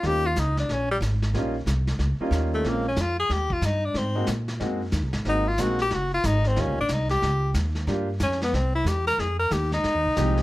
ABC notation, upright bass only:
X:1
M:4/4
L:1/8
Q:"Swing" 1/4=184
K:Ebmix
V:1 name="Upright bass" clef=bass
E,,2 D,,2 B,,,2 A,,,2 | B,,,2 C,,2 D,, z E,,2 | B,,,2 F,,2 E,,2 G,,2 | A,,2 B,,2 _G,,2 (3E,, C,, A,,, |
A,,,2 B,,,2 _G,,,2 A,,,2 | (3E,, D,, B,,, C,,2 D,,2 E,,2 | G,,2 F,,2 C,,2 =E,,2 | F,,2 E,,2 (3F,, E,, C,, C,,2 |]